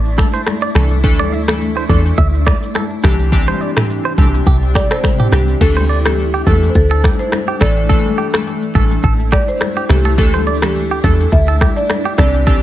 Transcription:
Already playing: A1 A3 D4 E4
0.05 shaker
0.18 A4, finger snap, kick, cross-stick, high conga, shaker
0.34 C5, shaker
0.46 finger snap, cross-stick, high conga, shaker
0.61 D5, shaker
0.74 C2 E3 A3 D4 A4, finger snap, cross-stick, high conga, low conga, shaker
0.91 shaker
1.03 D2 E3 A3 D4 A4, kick, low conga, shaker
1.19 D5, high conga, shaker
1.32 E5, shaker
1.48 E3 A3 D4 A4, finger snap, cross-stick, high conga, shaker
1.62 shaker
1.76 C5, shaker
1.89 E2 E3 A3 D4 A4 D5, kick, high conga, shaker
2.06 shaker
2.17 D2 E5, kick, shaker
2.34 shaker
2.46 D5, finger snap, kick, cross-stick, high conga, shaker
2.63 shaker
2.75 A4, finger snap, cross-stick, high conga, shaker
2.90 shaker
3.02 C2 C3 E3 C4 D4 G4 A4, finger snap, kick, cross-stick, high conga, low conga, shaker
3.19 shaker
3.32 E3 C4 D4 G4, kick, low conga, shaker
3.47 C5, high conga, shaker
3.61 D5, shaker
3.76 E3 C4 D4 G4, finger snap, cross-stick, mid tom, high conga, shaker
3.90 shaker
4.05 C5, shaker
4.18 C2 E3 C4 D4 G4 A4, kick, high conga, shaker
4.34 shaker
4.46 C2 G4, kick, shaker
4.63 shaker
4.75 G4 D5, finger snap, kick, cross-stick, high conga, shaker
4.91 A4 C5, finger snap, cross-stick, shaker
5.04 finger snap, kick, cross-stick, high conga, shaker
5.19 G4, mid tom, shaker
5.31 C2 E3 C4 D4 G4, finger snap, cross-stick, high conga, low conga, shaker
5.48 shaker
5.61 D2 E3 A3 D4 E4 A4, kick, crash, low conga, shaker
5.76 C5, high conga, shaker
5.89 D5, shaker
6.05 E3 A3 D4 G4 A4, finger snap, cross-stick, high conga, shaker
6.19 shaker
6.34 G4, shaker
6.46 E2 E3 A3 D4 A4, kick, high conga, shaker
6.63 shaker
6.70 C5
6.74 D2 A4, kick, shaker
6.91 A4, shaker
7.04 G4, finger snap, kick, cross-stick, high conga, shaker
7.19 C5, shaker
7.32 finger snap, cross-stick, high conga, shaker
7.47 G4, shaker
7.60 A1 E3 A3 D4 E4 A4 D5, finger snap, kick, cross-stick, high conga, low conga, shaker
7.76 shaker
7.89 E3 A3 D4 A4, kick, low conga, shaker
8.04 high conga, shaker
8.18 G4, shaker
8.33 E3 A3 D4 A4, finger snap, cross-stick, high conga, shaker
8.47 shaker
8.62 shaker
8.75 A1 E3 A3 D4 A4, kick, high conga, shaker
8.91 shaker
9.03 A1 A4, kick, shaker
9.19 shaker
9.32 G4 D5, finger snap, kick, cross-stick, high conga, shaker
9.48 C5, shaker
9.61 finger snap, cross-stick, high conga, shaker
9.76 G4, shaker
9.88 C2 E3 A3 D4 G4 A4, finger snap, cross-stick, high conga, low conga, shaker
10.05 A4, shaker
10.18 D2 E3 A3 D4 A4, kick, low conga, shaker
10.33 C5, high conga, shaker
10.47 D5, shaker
10.62 E3 A3 D4 G4 A4, finger snap, cross-stick, high conga, shaker
10.76 shaker
10.91 G4, shaker
11.04 E2 E3 A3 D4 A4, kick, high conga, shaker
11.20 shaker
11.32 D2 E5, kick, shaker
11.48 A4, shaker
11.61 G4, finger snap, kick, cross-stick, high conga, shaker
11.76 D5, shaker
11.90 finger snap, cross-stick, high conga, shaker
12.04 G4, shaker
12.17 C2 C3 E3 C4 D4 G4 A4 D5, finger snap, kick, cross-stick, high conga, low conga, shaker
12.34 shaker
12.47 E3 C4 D4 G4 A4, kick, low conga, shaker

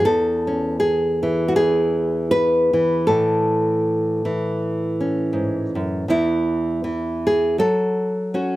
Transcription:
Already playing: E3
0.05 E2 A4
0.47 C#4
0.80 G#4
1.23 E3
1.48 F#4
1.56 E2 G#4
2.31 B4
2.73 E3
3.07 A2 A4
4.25 E3
5.01 C#4
5.33 G#2
5.75 F#2
6.08 E2 E3 E4
6.84 E3
7.27 G#4
7.58 F#3 A4
8.34 C#4 F#4

